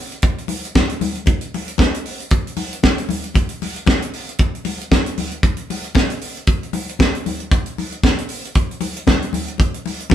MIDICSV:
0, 0, Header, 1, 2, 480
1, 0, Start_track
1, 0, Tempo, 520382
1, 1172, Time_signature, 4, 2, 24, 8
1, 9361, End_track
2, 0, Start_track
2, 0, Title_t, "Drums"
2, 109, Note_on_c, 9, 42, 53
2, 201, Note_off_c, 9, 42, 0
2, 202, Note_on_c, 9, 42, 64
2, 212, Note_on_c, 9, 36, 124
2, 294, Note_off_c, 9, 42, 0
2, 305, Note_off_c, 9, 36, 0
2, 353, Note_on_c, 9, 42, 42
2, 444, Note_on_c, 9, 62, 59
2, 445, Note_off_c, 9, 42, 0
2, 448, Note_on_c, 9, 46, 70
2, 536, Note_off_c, 9, 62, 0
2, 540, Note_off_c, 9, 46, 0
2, 599, Note_on_c, 9, 42, 62
2, 691, Note_off_c, 9, 42, 0
2, 693, Note_on_c, 9, 63, 80
2, 696, Note_on_c, 9, 36, 119
2, 698, Note_on_c, 9, 38, 111
2, 786, Note_off_c, 9, 63, 0
2, 788, Note_off_c, 9, 36, 0
2, 790, Note_off_c, 9, 38, 0
2, 824, Note_on_c, 9, 42, 51
2, 917, Note_off_c, 9, 42, 0
2, 931, Note_on_c, 9, 46, 69
2, 931, Note_on_c, 9, 63, 79
2, 1023, Note_off_c, 9, 46, 0
2, 1023, Note_off_c, 9, 63, 0
2, 1064, Note_on_c, 9, 42, 44
2, 1156, Note_off_c, 9, 42, 0
2, 1162, Note_on_c, 9, 62, 38
2, 1166, Note_on_c, 9, 42, 76
2, 1172, Note_on_c, 9, 36, 122
2, 1254, Note_off_c, 9, 62, 0
2, 1259, Note_off_c, 9, 42, 0
2, 1264, Note_off_c, 9, 36, 0
2, 1299, Note_on_c, 9, 42, 51
2, 1391, Note_off_c, 9, 42, 0
2, 1420, Note_on_c, 9, 46, 72
2, 1424, Note_on_c, 9, 62, 56
2, 1512, Note_off_c, 9, 46, 0
2, 1516, Note_off_c, 9, 62, 0
2, 1547, Note_on_c, 9, 42, 51
2, 1639, Note_off_c, 9, 42, 0
2, 1642, Note_on_c, 9, 63, 76
2, 1653, Note_on_c, 9, 36, 113
2, 1660, Note_on_c, 9, 38, 100
2, 1734, Note_off_c, 9, 63, 0
2, 1745, Note_off_c, 9, 36, 0
2, 1752, Note_off_c, 9, 38, 0
2, 1793, Note_on_c, 9, 42, 59
2, 1886, Note_off_c, 9, 42, 0
2, 1895, Note_on_c, 9, 46, 69
2, 1987, Note_off_c, 9, 46, 0
2, 2030, Note_on_c, 9, 42, 51
2, 2122, Note_off_c, 9, 42, 0
2, 2125, Note_on_c, 9, 42, 65
2, 2134, Note_on_c, 9, 36, 115
2, 2217, Note_off_c, 9, 42, 0
2, 2226, Note_off_c, 9, 36, 0
2, 2278, Note_on_c, 9, 42, 42
2, 2365, Note_on_c, 9, 46, 72
2, 2368, Note_on_c, 9, 62, 57
2, 2370, Note_off_c, 9, 42, 0
2, 2458, Note_off_c, 9, 46, 0
2, 2460, Note_off_c, 9, 62, 0
2, 2515, Note_on_c, 9, 42, 63
2, 2607, Note_off_c, 9, 42, 0
2, 2611, Note_on_c, 9, 63, 75
2, 2616, Note_on_c, 9, 38, 109
2, 2617, Note_on_c, 9, 36, 109
2, 2704, Note_off_c, 9, 63, 0
2, 2708, Note_off_c, 9, 38, 0
2, 2709, Note_off_c, 9, 36, 0
2, 2749, Note_on_c, 9, 42, 53
2, 2841, Note_off_c, 9, 42, 0
2, 2848, Note_on_c, 9, 63, 80
2, 2860, Note_on_c, 9, 46, 67
2, 2941, Note_off_c, 9, 63, 0
2, 2952, Note_off_c, 9, 46, 0
2, 2986, Note_on_c, 9, 42, 48
2, 3078, Note_off_c, 9, 42, 0
2, 3084, Note_on_c, 9, 62, 39
2, 3091, Note_on_c, 9, 42, 80
2, 3094, Note_on_c, 9, 36, 117
2, 3176, Note_off_c, 9, 62, 0
2, 3184, Note_off_c, 9, 42, 0
2, 3187, Note_off_c, 9, 36, 0
2, 3217, Note_on_c, 9, 42, 52
2, 3309, Note_off_c, 9, 42, 0
2, 3339, Note_on_c, 9, 62, 55
2, 3343, Note_on_c, 9, 46, 80
2, 3431, Note_off_c, 9, 62, 0
2, 3435, Note_off_c, 9, 46, 0
2, 3467, Note_on_c, 9, 42, 48
2, 3560, Note_off_c, 9, 42, 0
2, 3565, Note_on_c, 9, 63, 81
2, 3573, Note_on_c, 9, 36, 124
2, 3582, Note_on_c, 9, 38, 99
2, 3657, Note_off_c, 9, 63, 0
2, 3666, Note_off_c, 9, 36, 0
2, 3675, Note_off_c, 9, 38, 0
2, 3710, Note_on_c, 9, 42, 56
2, 3802, Note_off_c, 9, 42, 0
2, 3813, Note_on_c, 9, 46, 73
2, 3906, Note_off_c, 9, 46, 0
2, 3955, Note_on_c, 9, 42, 50
2, 4044, Note_off_c, 9, 42, 0
2, 4044, Note_on_c, 9, 42, 59
2, 4053, Note_on_c, 9, 36, 114
2, 4136, Note_off_c, 9, 42, 0
2, 4145, Note_off_c, 9, 36, 0
2, 4194, Note_on_c, 9, 42, 38
2, 4286, Note_off_c, 9, 42, 0
2, 4286, Note_on_c, 9, 46, 74
2, 4289, Note_on_c, 9, 62, 62
2, 4378, Note_off_c, 9, 46, 0
2, 4381, Note_off_c, 9, 62, 0
2, 4439, Note_on_c, 9, 42, 64
2, 4532, Note_off_c, 9, 42, 0
2, 4532, Note_on_c, 9, 63, 78
2, 4535, Note_on_c, 9, 36, 114
2, 4536, Note_on_c, 9, 38, 120
2, 4624, Note_off_c, 9, 63, 0
2, 4627, Note_off_c, 9, 36, 0
2, 4628, Note_off_c, 9, 38, 0
2, 4667, Note_on_c, 9, 42, 53
2, 4759, Note_off_c, 9, 42, 0
2, 4773, Note_on_c, 9, 46, 80
2, 4777, Note_on_c, 9, 63, 68
2, 4865, Note_off_c, 9, 46, 0
2, 4869, Note_off_c, 9, 63, 0
2, 4901, Note_on_c, 9, 42, 48
2, 4993, Note_off_c, 9, 42, 0
2, 5009, Note_on_c, 9, 42, 78
2, 5010, Note_on_c, 9, 36, 120
2, 5012, Note_on_c, 9, 62, 36
2, 5101, Note_off_c, 9, 42, 0
2, 5102, Note_off_c, 9, 36, 0
2, 5104, Note_off_c, 9, 62, 0
2, 5134, Note_on_c, 9, 42, 51
2, 5226, Note_off_c, 9, 42, 0
2, 5259, Note_on_c, 9, 46, 73
2, 5260, Note_on_c, 9, 62, 49
2, 5351, Note_off_c, 9, 46, 0
2, 5352, Note_off_c, 9, 62, 0
2, 5386, Note_on_c, 9, 42, 47
2, 5479, Note_off_c, 9, 42, 0
2, 5486, Note_on_c, 9, 63, 81
2, 5492, Note_on_c, 9, 36, 110
2, 5501, Note_on_c, 9, 38, 98
2, 5578, Note_off_c, 9, 63, 0
2, 5584, Note_off_c, 9, 36, 0
2, 5594, Note_off_c, 9, 38, 0
2, 5625, Note_on_c, 9, 42, 57
2, 5717, Note_off_c, 9, 42, 0
2, 5731, Note_on_c, 9, 46, 63
2, 5823, Note_off_c, 9, 46, 0
2, 5875, Note_on_c, 9, 42, 46
2, 5965, Note_off_c, 9, 42, 0
2, 5965, Note_on_c, 9, 42, 67
2, 5972, Note_on_c, 9, 36, 113
2, 6058, Note_off_c, 9, 42, 0
2, 6064, Note_off_c, 9, 36, 0
2, 6116, Note_on_c, 9, 42, 39
2, 6208, Note_off_c, 9, 42, 0
2, 6209, Note_on_c, 9, 62, 63
2, 6211, Note_on_c, 9, 46, 67
2, 6301, Note_off_c, 9, 62, 0
2, 6303, Note_off_c, 9, 46, 0
2, 6357, Note_on_c, 9, 42, 64
2, 6449, Note_on_c, 9, 63, 78
2, 6450, Note_off_c, 9, 42, 0
2, 6456, Note_on_c, 9, 36, 119
2, 6462, Note_on_c, 9, 38, 118
2, 6541, Note_off_c, 9, 63, 0
2, 6548, Note_off_c, 9, 36, 0
2, 6554, Note_off_c, 9, 38, 0
2, 6593, Note_on_c, 9, 42, 50
2, 6685, Note_off_c, 9, 42, 0
2, 6696, Note_on_c, 9, 46, 67
2, 6698, Note_on_c, 9, 63, 75
2, 6788, Note_off_c, 9, 46, 0
2, 6790, Note_off_c, 9, 63, 0
2, 6825, Note_on_c, 9, 42, 46
2, 6917, Note_off_c, 9, 42, 0
2, 6931, Note_on_c, 9, 62, 34
2, 6932, Note_on_c, 9, 36, 126
2, 6932, Note_on_c, 9, 42, 81
2, 7023, Note_off_c, 9, 62, 0
2, 7024, Note_off_c, 9, 36, 0
2, 7024, Note_off_c, 9, 42, 0
2, 7063, Note_on_c, 9, 42, 48
2, 7156, Note_off_c, 9, 42, 0
2, 7180, Note_on_c, 9, 62, 58
2, 7184, Note_on_c, 9, 46, 72
2, 7272, Note_off_c, 9, 62, 0
2, 7276, Note_off_c, 9, 46, 0
2, 7307, Note_on_c, 9, 42, 50
2, 7399, Note_off_c, 9, 42, 0
2, 7411, Note_on_c, 9, 63, 77
2, 7412, Note_on_c, 9, 36, 122
2, 7422, Note_on_c, 9, 38, 99
2, 7503, Note_off_c, 9, 63, 0
2, 7504, Note_off_c, 9, 36, 0
2, 7514, Note_off_c, 9, 38, 0
2, 7549, Note_on_c, 9, 42, 54
2, 7641, Note_off_c, 9, 42, 0
2, 7643, Note_on_c, 9, 46, 63
2, 7736, Note_off_c, 9, 46, 0
2, 7795, Note_on_c, 9, 42, 49
2, 7886, Note_off_c, 9, 42, 0
2, 7886, Note_on_c, 9, 42, 64
2, 7891, Note_on_c, 9, 36, 111
2, 7978, Note_off_c, 9, 42, 0
2, 7984, Note_off_c, 9, 36, 0
2, 8034, Note_on_c, 9, 42, 36
2, 8123, Note_on_c, 9, 62, 62
2, 8125, Note_on_c, 9, 46, 64
2, 8126, Note_off_c, 9, 42, 0
2, 8215, Note_off_c, 9, 62, 0
2, 8217, Note_off_c, 9, 46, 0
2, 8270, Note_on_c, 9, 42, 63
2, 8363, Note_off_c, 9, 42, 0
2, 8364, Note_on_c, 9, 63, 83
2, 8370, Note_on_c, 9, 38, 125
2, 8372, Note_on_c, 9, 36, 112
2, 8457, Note_off_c, 9, 63, 0
2, 8462, Note_off_c, 9, 38, 0
2, 8465, Note_off_c, 9, 36, 0
2, 8508, Note_on_c, 9, 42, 49
2, 8600, Note_off_c, 9, 42, 0
2, 8605, Note_on_c, 9, 63, 82
2, 8614, Note_on_c, 9, 46, 69
2, 8697, Note_off_c, 9, 63, 0
2, 8706, Note_off_c, 9, 46, 0
2, 8746, Note_on_c, 9, 42, 46
2, 8837, Note_on_c, 9, 62, 34
2, 8838, Note_off_c, 9, 42, 0
2, 8852, Note_on_c, 9, 36, 119
2, 8855, Note_on_c, 9, 42, 77
2, 8929, Note_off_c, 9, 62, 0
2, 8944, Note_off_c, 9, 36, 0
2, 8947, Note_off_c, 9, 42, 0
2, 8986, Note_on_c, 9, 42, 54
2, 9078, Note_off_c, 9, 42, 0
2, 9091, Note_on_c, 9, 62, 57
2, 9105, Note_on_c, 9, 46, 73
2, 9184, Note_off_c, 9, 62, 0
2, 9198, Note_off_c, 9, 46, 0
2, 9228, Note_on_c, 9, 42, 52
2, 9314, Note_on_c, 9, 63, 87
2, 9320, Note_off_c, 9, 42, 0
2, 9329, Note_on_c, 9, 36, 116
2, 9361, Note_off_c, 9, 36, 0
2, 9361, Note_off_c, 9, 63, 0
2, 9361, End_track
0, 0, End_of_file